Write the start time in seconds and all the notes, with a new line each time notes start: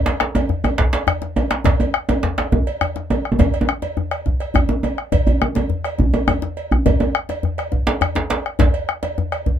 0.06 cowbell, djembe slap
0.20 bombo rim, djembe slap
0.35 bombo rim, cowbell, djembe slap, djembe tone
0.49 bombo rim, djembe slap, djembe bass
0.64 bombo rim, cowbell, djembe tone
0.78 bombo low, djembe slap, djembe tone
0.93 cowbell, djembe slap
1.07 bombo rim, cowbell, djembe bass
1.22 bombo rim, djembe slap, djembe tone
1.36 cowbell, djembe slap, djembe tone
1.51 bombo rim, djembe slap
1.64 bombo low, cowbell, djembe slap, djembe tone, djembe bass
1.80 cowbell, djembe tone
1.94 bombo rim, djembe slap
2.09 bombo rim, cowbell, djembe slap, djembe tone
2.23 bombo rim, djembe slap, djembe bass
2.38 bombo rim, cowbell, djembe slap
2.52 bombo low, djembe tone
2.67 cowbell
2.81 bombo rim, cowbell, djembe bass
2.96 bombo rim, djembe slap, djembe tone
3.10 cowbell, djembe slap, djembe tone
3.25 bombo rim
3.32 djembe tone
3.39 bombo low, cowbell, djembe slap, djembe tone, djembe bass
3.53 bombo rim, cowbell, djembe slap
3.61 djembe tone
3.69 bombo rim
3.82 cowbell, djembe slap, djembe tone
3.97 bombo rim, djembe bass
4.11 bombo rim, cowbell
4.26 bombo low, djembe tone
4.40 bombo rim, cowbell, djembe slap
4.54 bombo rim, cowbell, djembe bass
4.69 djembe slap, djembe tone
4.83 bombo rim, cowbell, djembe tone
4.98 bombo rim
5.12 bombo low, cowbell, djembe slap, djembe tone, djembe bass
5.27 cowbell, djembe bass
5.42 bombo rim, djembe tone
5.55 bombo rim, cowbell, djembe slap, djembe tone
5.70 djembe slap, djembe bass
5.84 bombo rim, cowbell
5.98 bombo low, djembe tone, djembe bass
6.14 cowbell, djembe tone
6.28 bombo rim, cowbell, djembe tone, djembe bass
6.42 bombo rim, djembe slap, djembe tone
6.57 cowbell, djembe slap
6.71 bombo rim, djembe bass
6.86 bombo low, cowbell, djembe slap, djembe tone, djembe bass
7.00 cowbell, djembe tone
7.14 bombo rim, djembe slap
7.29 bombo rim, cowbell, djembe slap, djembe tone
7.43 bombo rim, djembe slap, djembe bass
7.58 bombo rim, cowbell
7.72 bombo low, djembe tone
7.87 cowbell, djembe slap
8.01 bombo rim, cowbell, djembe bass
8.15 bombo rim, djembe slap, djembe tone
8.30 cowbell, djembe slap
8.46 bombo rim
8.59 bombo low, cowbell, djembe slap, djembe tone, djembe bass
8.74 cowbell
8.89 bombo rim, djembe slap
9.03 bombo rim, cowbell, djembe slap, djembe tone
9.18 bombo rim, djembe slap, djembe bass
9.32 bombo rim, cowbell
9.46 bombo low, djembe tone